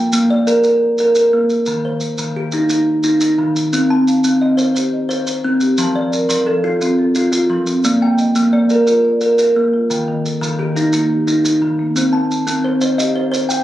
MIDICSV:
0, 0, Header, 1, 4, 480
1, 0, Start_track
1, 0, Tempo, 342857
1, 2339, Time_signature, 12, 3, 24, 8
1, 19090, End_track
2, 0, Start_track
2, 0, Title_t, "Marimba"
2, 0, Program_c, 0, 12
2, 5466, Note_on_c, 0, 60, 83
2, 5710, Note_on_c, 0, 77, 65
2, 5935, Note_off_c, 0, 77, 0
2, 5945, Note_off_c, 0, 60, 0
2, 5952, Note_on_c, 0, 77, 66
2, 6197, Note_on_c, 0, 60, 79
2, 6433, Note_on_c, 0, 72, 66
2, 6668, Note_off_c, 0, 77, 0
2, 6669, Note_on_c, 0, 67, 80
2, 6670, Note_off_c, 0, 60, 0
2, 6905, Note_on_c, 0, 75, 69
2, 7147, Note_off_c, 0, 67, 0
2, 7149, Note_off_c, 0, 72, 0
2, 7389, Note_on_c, 0, 72, 79
2, 7625, Note_off_c, 0, 75, 0
2, 7867, Note_off_c, 0, 72, 0
2, 7873, Note_on_c, 0, 67, 78
2, 8122, Note_on_c, 0, 81, 64
2, 8347, Note_on_c, 0, 53, 82
2, 8349, Note_off_c, 0, 67, 0
2, 8587, Note_on_c, 0, 70, 62
2, 8593, Note_off_c, 0, 81, 0
2, 8817, Note_off_c, 0, 70, 0
2, 8826, Note_off_c, 0, 53, 0
2, 8834, Note_on_c, 0, 70, 64
2, 9064, Note_on_c, 0, 53, 84
2, 9305, Note_on_c, 0, 65, 71
2, 9545, Note_off_c, 0, 53, 0
2, 9546, Note_on_c, 0, 60, 84
2, 9550, Note_off_c, 0, 70, 0
2, 9780, Note_on_c, 0, 69, 72
2, 10025, Note_off_c, 0, 65, 0
2, 10026, Note_off_c, 0, 60, 0
2, 10257, Note_on_c, 0, 65, 79
2, 10503, Note_off_c, 0, 69, 0
2, 10741, Note_off_c, 0, 65, 0
2, 10741, Note_on_c, 0, 60, 80
2, 10977, Note_on_c, 0, 74, 62
2, 11224, Note_off_c, 0, 60, 0
2, 11231, Note_on_c, 0, 58, 87
2, 11460, Note_on_c, 0, 75, 68
2, 11462, Note_off_c, 0, 74, 0
2, 11709, Note_off_c, 0, 58, 0
2, 11945, Note_on_c, 0, 58, 84
2, 12179, Note_on_c, 0, 70, 64
2, 12184, Note_off_c, 0, 75, 0
2, 12417, Note_on_c, 0, 65, 85
2, 12426, Note_off_c, 0, 58, 0
2, 12666, Note_on_c, 0, 74, 73
2, 12902, Note_off_c, 0, 65, 0
2, 12903, Note_off_c, 0, 70, 0
2, 13146, Note_on_c, 0, 70, 78
2, 13386, Note_off_c, 0, 74, 0
2, 13626, Note_off_c, 0, 70, 0
2, 13630, Note_on_c, 0, 65, 74
2, 13871, Note_on_c, 0, 79, 65
2, 14109, Note_off_c, 0, 65, 0
2, 14113, Note_on_c, 0, 51, 87
2, 14349, Note_off_c, 0, 79, 0
2, 14354, Note_on_c, 0, 69, 62
2, 14574, Note_off_c, 0, 69, 0
2, 14590, Note_off_c, 0, 51, 0
2, 14591, Note_on_c, 0, 69, 66
2, 14821, Note_on_c, 0, 51, 77
2, 15060, Note_on_c, 0, 63, 69
2, 15303, Note_off_c, 0, 51, 0
2, 15304, Note_on_c, 0, 58, 78
2, 15309, Note_off_c, 0, 69, 0
2, 15547, Note_on_c, 0, 67, 66
2, 15783, Note_off_c, 0, 63, 0
2, 15785, Note_off_c, 0, 58, 0
2, 16028, Note_on_c, 0, 63, 78
2, 16266, Note_off_c, 0, 67, 0
2, 16506, Note_off_c, 0, 63, 0
2, 16508, Note_on_c, 0, 58, 73
2, 16760, Note_on_c, 0, 72, 66
2, 16986, Note_off_c, 0, 58, 0
2, 17007, Note_on_c, 0, 60, 89
2, 17232, Note_off_c, 0, 72, 0
2, 17475, Note_off_c, 0, 60, 0
2, 17476, Note_on_c, 0, 81, 62
2, 17721, Note_on_c, 0, 60, 85
2, 17964, Note_on_c, 0, 75, 65
2, 18189, Note_off_c, 0, 81, 0
2, 18190, Note_on_c, 0, 67, 81
2, 18191, Note_off_c, 0, 60, 0
2, 18435, Note_on_c, 0, 72, 70
2, 18665, Note_off_c, 0, 67, 0
2, 18672, Note_off_c, 0, 75, 0
2, 18892, Note_off_c, 0, 72, 0
2, 18909, Note_on_c, 0, 72, 82
2, 19090, Note_off_c, 0, 72, 0
2, 19090, End_track
3, 0, Start_track
3, 0, Title_t, "Kalimba"
3, 0, Program_c, 1, 108
3, 0, Note_on_c, 1, 79, 61
3, 182, Note_on_c, 1, 58, 81
3, 421, Note_off_c, 1, 79, 0
3, 426, Note_on_c, 1, 74, 69
3, 660, Note_off_c, 1, 58, 0
3, 660, Note_on_c, 1, 70, 81
3, 891, Note_off_c, 1, 70, 0
3, 907, Note_on_c, 1, 70, 67
3, 1143, Note_off_c, 1, 74, 0
3, 1385, Note_off_c, 1, 70, 0
3, 1402, Note_on_c, 1, 70, 78
3, 1611, Note_off_c, 1, 70, 0
3, 1628, Note_on_c, 1, 70, 71
3, 1864, Note_on_c, 1, 58, 78
3, 2342, Note_off_c, 1, 58, 0
3, 2343, Note_on_c, 1, 51, 92
3, 2344, Note_off_c, 1, 70, 0
3, 2590, Note_on_c, 1, 72, 62
3, 2822, Note_off_c, 1, 51, 0
3, 3065, Note_on_c, 1, 51, 78
3, 3306, Note_off_c, 1, 72, 0
3, 3310, Note_on_c, 1, 67, 67
3, 3543, Note_off_c, 1, 51, 0
3, 3547, Note_on_c, 1, 63, 85
3, 3764, Note_off_c, 1, 63, 0
3, 3781, Note_on_c, 1, 63, 66
3, 4026, Note_off_c, 1, 67, 0
3, 4243, Note_off_c, 1, 63, 0
3, 4260, Note_on_c, 1, 63, 79
3, 4486, Note_off_c, 1, 63, 0
3, 4503, Note_on_c, 1, 63, 67
3, 4740, Note_on_c, 1, 51, 76
3, 5221, Note_off_c, 1, 51, 0
3, 5221, Note_on_c, 1, 60, 89
3, 5223, Note_off_c, 1, 63, 0
3, 5465, Note_on_c, 1, 81, 63
3, 5702, Note_off_c, 1, 60, 0
3, 5946, Note_on_c, 1, 60, 77
3, 6181, Note_on_c, 1, 75, 62
3, 6185, Note_off_c, 1, 81, 0
3, 6403, Note_on_c, 1, 72, 81
3, 6425, Note_off_c, 1, 60, 0
3, 6627, Note_off_c, 1, 72, 0
3, 6644, Note_on_c, 1, 72, 63
3, 6902, Note_off_c, 1, 75, 0
3, 7109, Note_off_c, 1, 72, 0
3, 7126, Note_on_c, 1, 72, 81
3, 7360, Note_off_c, 1, 72, 0
3, 7376, Note_on_c, 1, 72, 62
3, 7621, Note_on_c, 1, 60, 77
3, 8096, Note_on_c, 1, 53, 88
3, 8101, Note_off_c, 1, 72, 0
3, 8103, Note_off_c, 1, 60, 0
3, 8336, Note_on_c, 1, 74, 58
3, 8580, Note_off_c, 1, 53, 0
3, 8806, Note_on_c, 1, 53, 84
3, 9049, Note_on_c, 1, 69, 61
3, 9061, Note_off_c, 1, 74, 0
3, 9296, Note_off_c, 1, 53, 0
3, 9296, Note_on_c, 1, 65, 78
3, 9521, Note_off_c, 1, 65, 0
3, 9538, Note_on_c, 1, 65, 67
3, 9778, Note_off_c, 1, 69, 0
3, 10004, Note_off_c, 1, 65, 0
3, 10021, Note_on_c, 1, 65, 76
3, 10231, Note_off_c, 1, 65, 0
3, 10248, Note_on_c, 1, 65, 65
3, 10495, Note_on_c, 1, 53, 78
3, 10977, Note_off_c, 1, 65, 0
3, 10981, Note_off_c, 1, 53, 0
3, 10986, Note_on_c, 1, 58, 96
3, 11232, Note_on_c, 1, 79, 63
3, 11466, Note_off_c, 1, 58, 0
3, 11698, Note_on_c, 1, 58, 90
3, 11939, Note_on_c, 1, 74, 65
3, 11949, Note_off_c, 1, 79, 0
3, 12182, Note_off_c, 1, 58, 0
3, 12189, Note_on_c, 1, 70, 79
3, 12399, Note_off_c, 1, 70, 0
3, 12416, Note_on_c, 1, 70, 70
3, 12663, Note_off_c, 1, 74, 0
3, 12881, Note_off_c, 1, 70, 0
3, 12898, Note_on_c, 1, 70, 79
3, 13123, Note_off_c, 1, 70, 0
3, 13140, Note_on_c, 1, 70, 71
3, 13390, Note_on_c, 1, 58, 77
3, 13862, Note_on_c, 1, 51, 89
3, 13864, Note_off_c, 1, 70, 0
3, 13868, Note_off_c, 1, 58, 0
3, 14345, Note_off_c, 1, 51, 0
3, 14579, Note_on_c, 1, 51, 88
3, 14829, Note_on_c, 1, 67, 63
3, 15063, Note_off_c, 1, 51, 0
3, 15069, Note_on_c, 1, 63, 81
3, 15285, Note_off_c, 1, 63, 0
3, 15302, Note_on_c, 1, 63, 63
3, 15547, Note_off_c, 1, 67, 0
3, 15766, Note_off_c, 1, 63, 0
3, 15783, Note_on_c, 1, 63, 72
3, 16009, Note_off_c, 1, 63, 0
3, 16026, Note_on_c, 1, 63, 68
3, 16267, Note_on_c, 1, 51, 70
3, 16743, Note_on_c, 1, 60, 91
3, 16745, Note_off_c, 1, 63, 0
3, 16746, Note_off_c, 1, 51, 0
3, 16976, Note_on_c, 1, 81, 62
3, 17223, Note_off_c, 1, 60, 0
3, 17457, Note_on_c, 1, 60, 86
3, 17699, Note_off_c, 1, 81, 0
3, 17702, Note_on_c, 1, 72, 63
3, 17921, Note_off_c, 1, 72, 0
3, 17939, Note_off_c, 1, 60, 0
3, 17939, Note_on_c, 1, 72, 79
3, 18175, Note_on_c, 1, 75, 70
3, 18402, Note_off_c, 1, 72, 0
3, 18418, Note_on_c, 1, 72, 64
3, 18625, Note_off_c, 1, 72, 0
3, 18642, Note_on_c, 1, 72, 79
3, 18883, Note_on_c, 1, 79, 66
3, 18897, Note_off_c, 1, 75, 0
3, 19090, Note_off_c, 1, 72, 0
3, 19090, Note_off_c, 1, 79, 0
3, 19090, End_track
4, 0, Start_track
4, 0, Title_t, "Drums"
4, 177, Note_on_c, 9, 70, 84
4, 317, Note_off_c, 9, 70, 0
4, 664, Note_on_c, 9, 70, 64
4, 804, Note_off_c, 9, 70, 0
4, 891, Note_on_c, 9, 70, 79
4, 1031, Note_off_c, 9, 70, 0
4, 1374, Note_on_c, 9, 70, 64
4, 1514, Note_off_c, 9, 70, 0
4, 1611, Note_on_c, 9, 70, 77
4, 1751, Note_off_c, 9, 70, 0
4, 2095, Note_on_c, 9, 70, 56
4, 2235, Note_off_c, 9, 70, 0
4, 2322, Note_on_c, 9, 70, 68
4, 2462, Note_off_c, 9, 70, 0
4, 2808, Note_on_c, 9, 70, 60
4, 2948, Note_off_c, 9, 70, 0
4, 3049, Note_on_c, 9, 70, 73
4, 3189, Note_off_c, 9, 70, 0
4, 3526, Note_on_c, 9, 70, 64
4, 3666, Note_off_c, 9, 70, 0
4, 3775, Note_on_c, 9, 70, 80
4, 3915, Note_off_c, 9, 70, 0
4, 4246, Note_on_c, 9, 70, 67
4, 4386, Note_off_c, 9, 70, 0
4, 4489, Note_on_c, 9, 70, 81
4, 4629, Note_off_c, 9, 70, 0
4, 4987, Note_on_c, 9, 70, 66
4, 5127, Note_off_c, 9, 70, 0
4, 5224, Note_on_c, 9, 70, 87
4, 5364, Note_off_c, 9, 70, 0
4, 5709, Note_on_c, 9, 70, 69
4, 5849, Note_off_c, 9, 70, 0
4, 5933, Note_on_c, 9, 70, 89
4, 6073, Note_off_c, 9, 70, 0
4, 6415, Note_on_c, 9, 70, 70
4, 6555, Note_off_c, 9, 70, 0
4, 6667, Note_on_c, 9, 70, 91
4, 6807, Note_off_c, 9, 70, 0
4, 7150, Note_on_c, 9, 70, 66
4, 7290, Note_off_c, 9, 70, 0
4, 7378, Note_on_c, 9, 70, 76
4, 7518, Note_off_c, 9, 70, 0
4, 7847, Note_on_c, 9, 70, 62
4, 7987, Note_off_c, 9, 70, 0
4, 8087, Note_on_c, 9, 70, 73
4, 8227, Note_off_c, 9, 70, 0
4, 8580, Note_on_c, 9, 70, 59
4, 8720, Note_off_c, 9, 70, 0
4, 8819, Note_on_c, 9, 70, 76
4, 8959, Note_off_c, 9, 70, 0
4, 9541, Note_on_c, 9, 70, 76
4, 9681, Note_off_c, 9, 70, 0
4, 10013, Note_on_c, 9, 70, 64
4, 10153, Note_off_c, 9, 70, 0
4, 10257, Note_on_c, 9, 70, 73
4, 10397, Note_off_c, 9, 70, 0
4, 10732, Note_on_c, 9, 70, 57
4, 10872, Note_off_c, 9, 70, 0
4, 10982, Note_on_c, 9, 70, 72
4, 11122, Note_off_c, 9, 70, 0
4, 11456, Note_on_c, 9, 70, 54
4, 11596, Note_off_c, 9, 70, 0
4, 11697, Note_on_c, 9, 70, 69
4, 11837, Note_off_c, 9, 70, 0
4, 12174, Note_on_c, 9, 70, 54
4, 12314, Note_off_c, 9, 70, 0
4, 12418, Note_on_c, 9, 70, 72
4, 12558, Note_off_c, 9, 70, 0
4, 12892, Note_on_c, 9, 70, 59
4, 13032, Note_off_c, 9, 70, 0
4, 13140, Note_on_c, 9, 70, 70
4, 13280, Note_off_c, 9, 70, 0
4, 13868, Note_on_c, 9, 70, 75
4, 14008, Note_off_c, 9, 70, 0
4, 14359, Note_on_c, 9, 70, 54
4, 14499, Note_off_c, 9, 70, 0
4, 14600, Note_on_c, 9, 70, 69
4, 14740, Note_off_c, 9, 70, 0
4, 15075, Note_on_c, 9, 70, 53
4, 15215, Note_off_c, 9, 70, 0
4, 15299, Note_on_c, 9, 70, 74
4, 15439, Note_off_c, 9, 70, 0
4, 15787, Note_on_c, 9, 70, 57
4, 15927, Note_off_c, 9, 70, 0
4, 16031, Note_on_c, 9, 70, 76
4, 16171, Note_off_c, 9, 70, 0
4, 16749, Note_on_c, 9, 70, 68
4, 16889, Note_off_c, 9, 70, 0
4, 17238, Note_on_c, 9, 70, 54
4, 17378, Note_off_c, 9, 70, 0
4, 17464, Note_on_c, 9, 70, 82
4, 17604, Note_off_c, 9, 70, 0
4, 17935, Note_on_c, 9, 70, 61
4, 18075, Note_off_c, 9, 70, 0
4, 18193, Note_on_c, 9, 70, 78
4, 18333, Note_off_c, 9, 70, 0
4, 18676, Note_on_c, 9, 70, 70
4, 18816, Note_off_c, 9, 70, 0
4, 18902, Note_on_c, 9, 70, 85
4, 19042, Note_off_c, 9, 70, 0
4, 19090, End_track
0, 0, End_of_file